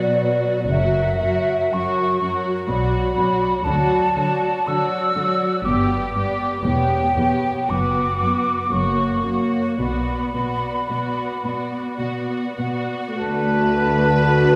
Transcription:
Already playing: B2 F#3 F#4 B4 D5
0.68 F#1 F#2 F#3 F#4 A#4 E5
1.19 F#2 F#3 F#4 A#4
1.73 F#2 F#3 F#4 A#4 C#6
2.21 F#2 F#3 F#4 A#4
2.68 B1 B2 F#3 F#4 D5 B5
3.17 B2 F#3 F#4 D5
3.64 D2 D3 F#3 F#4 D5 A5
4.16 D3 F#3 F#4 D5
4.67 D3 F#3 F#4 D5 E6
5.16 D3 F#3 F#4 D5
5.64 G1 G2 B3 G4 D5 D6
6.12 G2 B3 G4 D5
6.63 E1 E2 B3 G4 C#5 G5
7.16 E2 B3 G4 C#5
7.68 F#1 F#2 B3 F#4 B4 D6
8.19 F#2 B3 F#4 B4
8.70 F#1 F#2 A#3 F#4 C#5 C#6
9.24 F#2 A#3 F#4 C#5
9.79 B1 B2 B3 F#4 D5 B5
10.34 B2 B3 F#4 D5
10.90 B2 B3 F#4 D5
11.44 B2 B3 F#4 D5
11.99 B2 B3 F#4 D5
12.58 B2 B3 F#4 D5
13.18 D2 D3 A3 F#4 B4 D5 F#5 A5

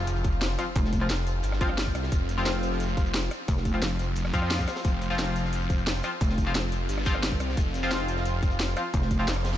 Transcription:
Already playing: F1 F3 C4 F4, impact
0.07 closed hi-hat
0.16 closed hi-hat
0.24 F1, kick, closed hi-hat
0.32 closed hi-hat
0.41 snare, closed hi-hat
0.50 closed hi-hat
0.58 F3 C4 F4, cross-stick, closed hi-hat
0.76 F1, kick, closed hi-hat
0.85 snare
0.93 kick, closed hi-hat
1.01 F3 C4 F4
1.10 F1, snare, closed hi-hat
1.27 closed hi-hat
1.43 G1, closed hi-hat
1.52 cross-stick, snare
1.61 F3 C4 F4, kick, closed hi-hat
1.69 cross-stick
1.77 snare, closed hi-hat
1.86 kick
1.95 C2, cross-stick, closed hi-hat
2.03 snare
2.12 F1, kick, closed hi-hat
2.29 closed hi-hat
2.38 F3 C4 F4, snare
2.46 snare, closed hi-hat
2.63 closed hi-hat
2.72 snare
2.80 closed hi-hat
2.88 closed hi-hat
2.97 F1, kick, closed hi-hat
3.06 closed hi-hat
3.14 snare, closed hi-hat
3.23 closed hi-hat
3.31 cross-stick, closed hi-hat
3.48 F1, kick, closed hi-hat
3.57 snare
3.65 kick, closed hi-hat
3.74 F3 C4 F4
3.82 F1, snare, closed hi-hat
3.99 closed hi-hat
4.16 F1, closed hi-hat
4.25 cross-stick, snare
4.33 F2 F3 C4 F4, kick, closed hi-hat
4.42 cross-stick
4.50 snare, closed hi-hat
4.58 kick, snare, closed hi-hat
4.68 cross-stick, snare, closed hi-hat
4.76 snare, closed hi-hat
4.85 F1, kick, closed hi-hat
5.02 closed hi-hat
5.10 F3 C4 F4, snare
5.19 snare, closed hi-hat
5.36 closed hi-hat
5.45 snare
5.53 closed hi-hat
5.62 closed hi-hat
5.70 F1, kick, closed hi-hat
5.78 closed hi-hat
5.87 snare, closed hi-hat
5.95 closed hi-hat
6.03 F3 C4 F4, cross-stick, closed hi-hat
6.21 F1, kick, closed hi-hat
6.29 snare
6.38 kick, closed hi-hat
6.47 F3 C4 F4
6.54 F1, snare, closed hi-hat
6.72 closed hi-hat
6.89 G1, closed hi-hat
6.98 cross-stick, snare
7.05 F3 C4 F4, kick, closed hi-hat
7.15 cross-stick
7.23 snare, closed hi-hat
7.32 kick
7.40 C2, cross-stick, closed hi-hat
7.50 snare
7.57 F1, kick, closed hi-hat
7.74 closed hi-hat
7.83 F3 C4 F4, snare
7.91 snare, closed hi-hat
8.08 closed hi-hat
8.17 snare
8.25 closed hi-hat
8.43 F1, kick, closed hi-hat
8.51 closed hi-hat
8.59 snare, closed hi-hat
8.68 closed hi-hat
8.76 F3 C4 F4, cross-stick, closed hi-hat
8.94 F1, kick, closed hi-hat, noise sweep
9.02 snare
9.11 kick, closed hi-hat
9.19 F3 C4 F4
9.28 F1, snare, closed hi-hat
9.36 cross-stick
9.44 snare, closed hi-hat
9.53 snare

